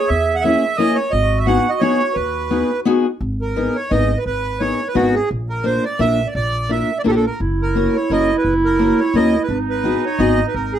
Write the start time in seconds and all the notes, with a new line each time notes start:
Already playing: G#4
0.07 E2 E5
0.35 F#5
0.41 A#3 C#4 E5
0.45 E4 G#4
0.77 A#3 C#4 E4 G#4 D#5
0.95 C#5
1.11 G#1 F#4 D#5
1.38 E5
1.46 B3 D#4 F#4 G#4 F#5
1.69 D#5
1.80 B3 D#4 F#4 G#4 C#5
2.14 D#2 B4
2.50 B3 D#4 F#4 G#4
2.85 B3 D#4 F#4 G#4
3.21 G#1
3.41 A#4
3.56 B3 D#4 G#4 A#4
3.75 C#5
3.90 G#1 B3 D#4 G#4 A#4 D#5
4.17 B4
4.26 G#1 B4
4.60 B3 D#4 G#4 A#4 C#5
4.88 B4
4.95 G#1 B3 D#4 F#4 G#4 A#4
5.15 G#4
5.31 A#1
5.49 A#4
5.64 A#3 D4 F4 A#4 C5
5.84 D5
5.99 A#1 A#3 D4 F4 A#4 E5
6.27 D5
6.35 A#1 D5
6.69 A#3 D4 F4 A#4 E5
6.99 D5
7.04 A#1 A#3 D4 F4 A4 A#4
7.10 G4
7.16 A4
7.26 A#4
7.40 F#1 E4
7.62 A#4
7.75 A#3 C#4 F#4 A#4
7.95 C#5
8.10 F#1 A#3 C#4 F#4 A#4 D#5
8.38 B4
8.44 F#1
8.65 A#4
8.79 A#3 C#4 F#4 A#4
9.00 C#5
9.14 D#2 A#3 C#4 F#4 A#4 D#5
9.43 B4
9.49 G#1 D#4
9.70 B4
9.84 B3 D#4 F#4 G#4
10.05 C#5
10.18 G#1 B3 D#4 F#4 G#4 D#5
10.48 B4
10.54 G#1 A#4
10.73 G#4